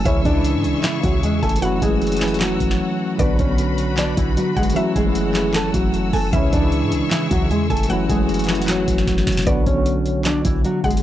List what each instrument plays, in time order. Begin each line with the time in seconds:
Already playing: string section E6
0.04 808-style bass C#2, tine electric piano C#3 E3 G#3 C#4, nylon-string guitar C#4 C#5, string section G#4 E5 C#6, synth pluck E5, kick, closed hi-hat
0.08 tine electric piano E4
0.25 808-style bass C#2, nylon-string guitar D4 D5, kick, closed hi-hat
0.34 tine electric piano E3 G#3 E4
0.45 closed hi-hat
0.55 808-style bass G#2
0.64 808-style bass C#2, closed hi-hat
0.83 nylon-string guitar E3 E4, snare, clap, closed hi-hat
1.03 808-style bass C#2, nylon-string guitar F#3 F#4, kick, closed hi-hat
1.23 808-style bass E2, nylon-string guitar G#3 G#4, closed hi-hat
1.43 808-style bass F#1, nylon-string guitar A3 A4, synth pluck G#5, kick, closed hi-hat
1.49 closed hi-hat
1.56 closed hi-hat
1.61 tine electric piano E3 F#3 A3 C#4, nylon-string guitar F#3 F#4, string section F#4 C#5 F#5 E6, synth pluck F#5, closed hi-hat
1.65 tine electric piano E4
1.82 808-style bass F#1, nylon-string guitar G#3 G#4, kick, closed hi-hat
1.89 tine electric piano E3 F#3 A3 C#4
1.94 tine electric piano F#4
2.02 closed hi-hat
2.07 closed hi-hat
2.12 closed hi-hat
2.17 tine electric piano E3, closed hi-hat
2.21 tine electric piano F#3 A3 C#4 E4, snare, clap, closed hi-hat
2.28 closed hi-hat
2.34 closed hi-hat
2.40 nylon-string guitar F#3 F#4, snare, clap, closed hi-hat
2.60 808-style bass F#1, kick, closed hi-hat
2.71 snare
3.17 808-style bass B1, tine electric piano D3 F#3 B3 D4, nylon-string guitar B3 B4, string section B4 B5, synth pluck D5, kick, closed hi-hat
3.22 tine electric piano F#4
3.39 808-style bass B1, nylon-string guitar C#4 C#5, kick, closed hi-hat
3.46 tine electric piano D3 F#3 B3
3.51 tine electric piano F#4
3.58 closed hi-hat
3.78 closed hi-hat
3.97 nylon-string guitar D4 D5, snare, clap, closed hi-hat
4.17 808-style bass B1, nylon-string guitar E3 E4, kick, closed hi-hat
4.37 nylon-string guitar F#3 F#4, closed hi-hat
4.56 808-style bass F#1, nylon-string guitar G#3 G#4, synth pluck F#5, kick, closed hi-hat
4.63 closed hi-hat
4.70 closed hi-hat
4.74 tine electric piano E3 F#3 A3 C#4, nylon-string guitar F#3 F#4, string section C#5 F#5 E6, synth pluck E5, closed hi-hat
4.78 tine electric piano E4
4.96 808-style bass F#1, nylon-string guitar G#3 G#4, kick, closed hi-hat
5.05 tine electric piano E3 F#3 A3 C#4
5.09 tine electric piano E4
5.15 closed hi-hat
5.33 tine electric piano E3 F#3 A3 C#4, snare, clap, closed hi-hat
5.37 tine electric piano E4
5.54 nylon-string guitar A3 A4, snare, clap, closed hi-hat
5.74 808-style bass F#1, nylon-string guitar F#3 F#4, kick, closed hi-hat
5.94 closed hi-hat
6.13 808-style bass F#1, nylon-string guitar A3 A4, synth pluck G#5, open hi-hat
6.31 808-style bass C#2, tine electric piano C#3 E3 G#3 C#4, nylon-string guitar C#4 C#5, string section G#4 E5 C#6, synth pluck E5, kick, closed hi-hat
6.36 tine electric piano E4
6.53 808-style bass C#2, nylon-string guitar D4 D5, kick, closed hi-hat
6.62 tine electric piano E3 G#3 E4
6.72 closed hi-hat
6.83 808-style bass G#2
6.92 808-style bass C#2, closed hi-hat
7.11 nylon-string guitar E3 E4, snare, clap, closed hi-hat
7.31 808-style bass C#2, nylon-string guitar F#3 F#4, kick, closed hi-hat
7.51 808-style bass E2, nylon-string guitar G#3 G#4, closed hi-hat
7.70 808-style bass F#1, nylon-string guitar A3 A4, synth pluck G#5, kick, closed hi-hat
7.77 closed hi-hat
7.83 closed hi-hat
7.88 tine electric piano E3 F#3 A3 C#4, nylon-string guitar F#3 F#4, string section F#4 C#5 F#5, synth pluck F#5, closed hi-hat
7.92 tine electric piano E4
8.09 808-style bass F#1, nylon-string guitar G#3 G#4, kick, closed hi-hat
8.17 tine electric piano E3 F#3 A3 C#4
8.21 tine electric piano F#4
8.29 closed hi-hat
8.34 closed hi-hat
8.39 closed hi-hat
8.44 tine electric piano E3, closed hi-hat
8.48 tine electric piano F#3 A3 C#4 E4, snare, clap, closed hi-hat
8.55 closed hi-hat
8.62 closed hi-hat
8.68 nylon-string guitar F#3 F#4, snare, clap, closed hi-hat
8.88 808-style bass F#1, kick, closed hi-hat
8.98 snare
9.07 808-style bass F#1, kick, snare, closed hi-hat
9.18 snare
9.27 808-style bass F#1, snare, closed hi-hat, open hi-hat
9.32 closed hi-hat
9.37 snare, closed hi-hat
9.42 tine electric piano D3 F#3, closed hi-hat
9.47 808-style bass B1, nylon-string guitar B3 B4, tine electric piano B3 D4 F#4, synth pluck D5, kick, closed hi-hat
9.66 808-style bass B1, nylon-string guitar C#4 C#5, kick, closed hi-hat
9.74 tine electric piano D3 F#3 B3
9.78 tine electric piano F#4
9.86 closed hi-hat
10.06 closed hi-hat
10.25 nylon-string guitar D4 D5, snare, clap, closed hi-hat
10.45 808-style bass B1, nylon-string guitar E3 E4, kick, closed hi-hat
10.64 nylon-string guitar F#3 F#4, closed hi-hat
10.84 808-style bass F#1, nylon-string guitar G#3 G#4, synth pluck F#5, kick, closed hi-hat
10.90 closed hi-hat
10.97 closed hi-hat